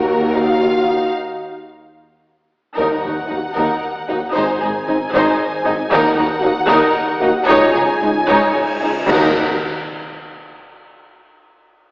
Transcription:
Already playing: D#2 A#3 D#4 F#4 A#4
0.34 D#4 F#4 F5
0.62 F4
0.89 D#4
2.76 D#2 D#3 D#4 A#4 F#5
3.03 D#2 D#4 F#4
3.27 D#2 A#3 D#4 F#4
3.31 D#2
3.54 D#2 D#4 A#4
3.58 D#2
4.09 D#2 A#3 D#4 F#4
4.34 G#1 G#2 D#4 C5 G#5
4.61 G#1 G#2 D#4 G#4
4.88 G#1 G#2 C4 D#4
5.14 G#1 G#2 D#4 C5
5.65 G#1 G#2 C4 D#4
5.92 D#2 D#3 D#4 A#4 F#5
6.18 D#2 D#4 F#4
6.41 D#2 A#3 D#4 F#4
6.45 D#2
6.68 D#2 D#4 A#4
7.20 D#2 A#3 D#4 F#4
7.47 C#2 D#4 C#5 G#5, cymbal swell
7.74 C#2 D#4 G#4
8.01 C#2 G#3 D#4
8.28 C#2 D#4 C#5
8.80 C#2 G#3 D#4
9.07 D#2 D#3 A#3 D#4 F#4 A#4 F#5, concert bass drum, crash, impact

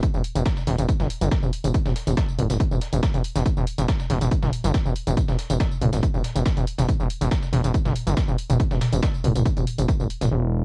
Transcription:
0.03 kick, closed hi-hat, tambourine
0.14 E1, tambourine
0.24 open hi-hat, tambourine
0.35 E1, closed hi-hat, tambourine
0.46 kick, snare, closed hi-hat, tambourine
0.57 snare, tambourine
0.67 E1, snare, open hi-hat, tambourine
0.78 E1, closed hi-hat, tambourine
0.89 kick, closed hi-hat, tambourine
1.00 G1, snare, tambourine
1.10 open hi-hat, tambourine
1.21 G1, closed hi-hat, tambourine
1.31 kick, snare, closed hi-hat, tambourine
1.43 E1, tambourine
1.53 open hi-hat, tambourine
1.64 E1, closed hi-hat, tambourine
1.74 kick, closed hi-hat, tambourine
1.86 E1, snare, tambourine
1.96 snare, open hi-hat, tambourine
2.07 E1, closed hi-hat, tambourine
2.17 kick, snare, closed hi-hat, tambourine
2.28 tambourine
2.38 D1, open hi-hat, tambourine
2.50 D1, snare, closed hi-hat, tambourine
2.60 kick, closed hi-hat, tambourine
2.71 E1, tambourine
2.81 snare, open hi-hat, tambourine
2.93 E1, closed hi-hat, tambourine
3.03 kick, snare, closed hi-hat, tambourine
3.14 E1, closed hi-hat, tambourine
3.24 open hi-hat, tambourine
3.36 E1, snare, closed hi-hat, tambourine
3.46 kick, closed hi-hat, tambourine
3.57 E1, tambourine
3.67 open hi-hat, tambourine
3.78 E1, closed hi-hat, tambourine
3.88 kick, snare, closed hi-hat, tambourine
4.00 snare, tambourine
4.10 E1, snare, mid tom, open hi-hat, tambourine
4.21 E1, closed hi-hat, tambourine
4.31 kick, closed hi-hat, tambourine
4.43 G1, snare, mid tom, tambourine
4.53 open hi-hat, tambourine
4.64 G1, closed hi-hat, tambourine
4.74 kick, snare, closed hi-hat, tambourine
4.86 E1, tambourine
4.96 open hi-hat, tambourine
5.07 E1, closed hi-hat, mid tom, tambourine
5.17 kick, closed hi-hat, tambourine
5.28 E1, snare, tambourine
5.39 snare, open hi-hat, tambourine
5.50 E1, closed hi-hat, tambourine
5.60 kick, snare, closed hi-hat, tambourine
5.71 tambourine
5.81 D1, mid tom, open hi-hat, tambourine
5.93 D1, snare, closed hi-hat, tambourine
6.03 kick, closed hi-hat, tambourine
6.14 E1, mid tom, tambourine
6.24 snare, open hi-hat, tambourine
6.35 E1, closed hi-hat, tambourine
6.46 kick, snare, closed hi-hat, tambourine
6.57 E1, closed hi-hat, tambourine
6.67 open hi-hat, tambourine
6.78 E1, snare, closed hi-hat, mid tom, tambourine
6.88 kick, closed hi-hat, tambourine
7.00 E1, tambourine
7.10 open hi-hat, tambourine
7.21 E1, closed hi-hat, tambourine
7.31 kick, snare, closed hi-hat, tambourine
7.43 snare, tambourine
7.53 E1, snare, mid tom, open hi-hat, tambourine
7.64 E1, closed hi-hat, tambourine
7.74 kick, closed hi-hat, tambourine
7.85 G1, snare, mid tom, tambourine
7.95 open hi-hat, tambourine
8.07 G1, closed hi-hat, tambourine
8.17 kick, snare, closed hi-hat, tambourine
8.28 E1, tambourine
8.38 open hi-hat, tambourine
8.50 E1, closed hi-hat, mid tom, tambourine
8.60 kick, closed hi-hat, tambourine
8.71 E1, snare, tambourine
8.81 snare, mid tom, open hi-hat, tambourine
8.93 E1, closed hi-hat, tambourine
9.03 kick, snare, closed hi-hat, tambourine
9.14 tambourine
9.24 D1, mid tom, open hi-hat, tambourine
9.36 D1, closed hi-hat, mid tom, tambourine
9.46 kick, closed hi-hat, tambourine
9.57 E1, mid tom, tambourine
9.67 open hi-hat
9.78 E1, closed hi-hat, tambourine
9.88 kick, closed hi-hat, tambourine
10.00 D1, tambourine
10.10 open hi-hat, tambourine
10.21 D1, snare, closed hi-hat, mid tom, tambourine
10.31 E1

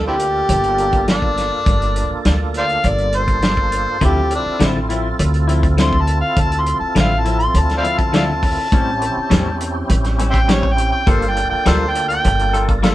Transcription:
Already playing: D2 A#3 D4 F4 A4
0.07 C4 E4 G4
0.19 closed hi-hat
0.49 G1, closed hi-hat
0.63 closed hi-hat
0.78 closed hi-hat
0.93 kick, closed hi-hat
1.08 D4, snare, closed hi-hat
1.22 kick
1.37 snare, closed hi-hat
1.66 G1, kick, closed hi-hat
1.82 closed hi-hat
1.96 closed hi-hat
2.11 muted upright bass stroke
2.25 D2, snare, closed hi-hat
2.54 C5 D5 F5, closed hi-hat
2.69 closed hi-hat
2.84 G1 D5, closed hi-hat
2.98 closed hi-hat
3.13 C5, closed hi-hat
3.28 kick, closed hi-hat
3.42 snare, closed hi-hat
3.57 kick
3.72 closed hi-hat
4.00 D2 D3 F3 C4 E4 F4 A4, kick, closed hi-hat
4.05 G4
4.31 closed hi-hat
4.36 D4
4.46 muted upright bass stroke
4.60 A1 D3 F3 C4 E4, snare, closed hi-hat
4.89 F3 C4 E4, closed hi-hat
5.19 D2, closed hi-hat
5.34 closed hi-hat
5.48 F3 C4 E4, closed hi-hat
5.63 kick, closed hi-hat
5.78 D3 F3 C4 E4, snare, closed hi-hat
5.82 C6
5.93 kick
6.01 A5
6.07 closed hi-hat
6.21 F5
6.36 D2 A5, kick, closed hi-hat
6.52 closed hi-hat
6.60 C6
6.66 closed hi-hat
6.80 A5, muted upright bass stroke
6.95 A1 D3 F3 C4 E4 F5, snare, closed hi-hat
7.19 A5
7.25 F3 C4 E4, closed hi-hat
7.38 C6, closed hi-hat
7.54 D2, closed hi-hat
7.59 A5
7.69 snare, closed hi-hat
7.78 C5 D5 F5
7.83 F3 C4 E4, closed hi-hat
7.98 A5, kick, closed hi-hat
8.13 D3 F3 C4 E4 D5 F5 A5, snare, closed hi-hat
8.43 kick, open hi-hat
8.71 A1 A2 G3 C4 C#4 E4 G4, kick, closed hi-hat
9.02 closed hi-hat
9.16 muted upright bass stroke
9.30 E2 A2 G3 C4 C#4, snare, closed hi-hat
9.60 closed hi-hat
9.89 A1, closed hi-hat
10.04 snare, closed hi-hat
10.19 G3 C4 C#4, closed hi-hat
10.31 C5 E5 G5, kick, closed hi-hat
10.48 A2 G3 C4 C#4, snare, closed hi-hat
10.52 C#5
10.63 kick
10.72 G5
10.78 closed hi-hat
10.92 G5
11.06 G1 G3 A#3 D4 F4 A4 C5, kick, closed hi-hat
11.22 closed hi-hat
11.30 G5
11.36 closed hi-hat
11.50 G5, muted upright bass stroke
11.66 D2 G3 A#3 F4 A4, snare, closed hi-hat
11.70 C5
11.89 G5
11.95 closed hi-hat
12.08 G5, closed hi-hat
12.24 G1, closed hi-hat
12.39 closed hi-hat
12.53 A#3 F4 A4, closed hi-hat
12.69 kick, closed hi-hat
12.83 G3 A#3 F4 A4, snare, closed hi-hat

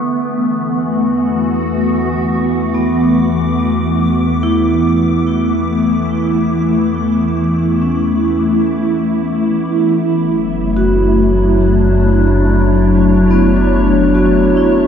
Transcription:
Already playing: E2 D3 E3 A3 B3
0.21 B3
0.44 F#4
2.11 D6
2.75 B3
4.43 E4
4.67 E4
7.82 C#4
9.92 F#1 F#3
10.56 D4
10.77 F#4
12.20 C#5
13.31 B3
13.57 D4
14.15 F#4
14.57 E4

